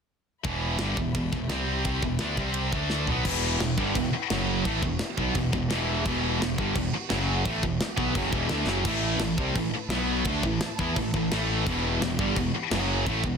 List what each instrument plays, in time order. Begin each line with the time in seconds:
0.44 picked electric bass E1, distorted electric guitar E2 B2 E3, string section B3 G4 E5 B5, kick, ride bell
0.78 picked electric bass G1, distorted electric guitar G2 D3 G3, snare, ride bell
0.97 picked electric bass E1, distorted electric guitar E2 B2, kick
1.14 picked electric bass E1, distorted electric guitar E2 B2, kick, ride bell
1.32 picked electric bass E1, distorted electric guitar E2 B2, kick
1.48 picked electric bass C2, distorted electric guitar C3 G3 C4, string section C4 G5 C6, snare, ride bell
1.85 kick, ride bell
2.02 picked electric bass E1, distorted electric guitar E2 B2, string section B3 E5 B5, kick
2.18 picked electric bass D2, distorted electric guitar D3 A3 D4, snare, ride bell
2.36 picked electric bass C2, distorted electric guitar C3 G3 C4, string section C4 G5 C6, kick
2.54 ride bell
2.72 picked electric bass D2, distorted electric guitar D3 A3 D4, string section D4 A4 A5 D6, kick
2.90 snare
3.06 picked electric bass B1, distorted electric guitar B2 F#3 B3, string section B4, floor tom
3.10 string section E4 G5 B5
3.25 distorted electric guitar E2 B2 E3, string section E4 B4 F#5 G5, kick, crash
3.59 picked electric bass E1, distorted electric guitar E2 B2, snare, crash
3.78 picked electric bass G1, distorted electric guitar G2 D3 G3, kick
3.95 picked electric bass E1, distorted electric guitar E2 B2, kick, crash
4.12 muted picked electric bass stroke, muted overdriven electric guitar stroke, muted distorted electric guitar stroke
4.30 picked electric bass F#1, distorted electric guitar F#2 C#3 F#3, string section F#3 C#4, snare, crash
4.34 string section F#4
4.64 picked electric bass A1, distorted electric guitar A2 E3 A3, string section E3 B3 G4, kick, crash
4.82 picked electric bass E1, distorted electric guitar E2 B2, kick
4.99 snare, crash
5.18 picked electric bass B1, distorted electric guitar B2 F#3 B3, kick
5.35 picked electric bass E1, distorted electric guitar E2 B2, kick, crash
5.52 picked electric bass E1, distorted electric guitar E2 B2, kick
5.70 picked electric bass E1, distorted electric guitar E2 B2 E3, snare, crash
6.05 picked electric bass E1, distorted electric guitar E2 B2 E3, kick, crash
6.40 picked electric bass E1, distorted electric guitar E2 B2, snare, crash
6.58 picked electric bass G1, distorted electric guitar G2 D3 G3, kick
6.75 picked electric bass E1, distorted electric guitar E2 B2, kick, crash
6.93 muted picked electric bass stroke, muted distorted electric guitar stroke, muted overdriven electric guitar stroke
7.09 picked electric bass F#1, distorted electric guitar F#2 C#3 F#3, string section F#3 C#4 F#5, snare, crash
7.45 distorted electric guitar A2 E3 A3, string section E3 B3 G4, kick, crash
7.63 picked electric bass E1, distorted electric guitar E2 B2, kick
7.81 snare, crash
7.97 picked electric bass B1, distorted electric guitar B2 F#3 B3, kick
8.13 picked electric bass F#1, distorted electric guitar F#2 C#3 F#3, kick, crash
8.31 picked electric bass E1, distorted electric guitar E2 B2 E3, kick
8.48 picked electric bass D2, distorted electric guitar D3 A3 D4, snare, crash
8.65 picked electric bass F#1, distorted electric guitar F#2 C#3 F#3, snare
8.84 picked electric bass A1, distorted electric guitar A2 E3 A3, string section A3 E4 B4 A5, kick, crash
9.17 picked electric bass A1, distorted electric guitar A2 E3, snare, crash
9.37 picked electric bass C2, distorted electric guitar C3 G3 C4, kick
9.55 picked electric bass A1, distorted electric guitar A2 E3, kick, crash
9.71 muted picked electric bass stroke, muted distorted electric guitar stroke, muted overdriven electric guitar stroke
9.89 picked electric bass B1, distorted electric guitar B2 F#3 B3, string section B3 F#4 B5, snare, crash
10.24 picked electric bass D2, distorted electric guitar D3 A3 D4, string section A3 E4 A5, kick, crash
10.43 picked electric bass A1, distorted electric guitar A2 E3, kick
10.61 snare, crash
10.79 picked electric bass E2, distorted electric guitar E3 B3 E4, kick
10.96 picked electric bass A1, distorted electric guitar A2 E3, kick, crash
11.14 picked electric bass A1, distorted electric guitar A2 E3, kick
11.31 picked electric bass A1, distorted electric guitar A2 E3 A3, snare, crash
11.65 picked electric bass E1, distorted electric guitar E2 B2 E3, string section E3 B3 F#4 G4, kick, crash
12.01 picked electric bass E1, distorted electric guitar E2 B2, snare, crash
12.18 picked electric bass G1, distorted electric guitar G2 D3 G3, kick
12.36 picked electric bass E1, distorted electric guitar E2 B2, kick, crash
12.53 muted picked electric bass stroke, muted distorted electric guitar stroke, muted overdriven electric guitar stroke
12.70 picked electric bass F#1, distorted electric guitar F#2 C#3 F#3, string section F#3 C#4 F#5, snare, crash
13.02 picked electric bass A1, distorted electric guitar A2 E3, string section E3 B3 G4
13.06 distorted electric guitar A3, kick, crash
13.23 picked electric bass E1, distorted electric guitar E2 B2, kick